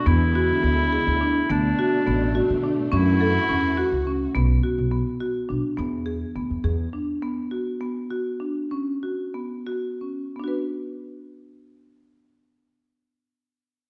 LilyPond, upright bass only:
\new Staff \with { instrumentName = "Upright bass" } { \clef bass \time 5/8 \key b \dorian \tempo 4 = 104 e,4 d,8. d,8. | d,8 r8 a,,8. d8 r16 | fis,4 e,8. cis,8. | b,,8 r16 b,,8 r8. b,,16 r16 |
e,4 d,16 e,16 e,8 r8 | r2 r8 | r2 r8 | r2 r8 |
r2 r8 | }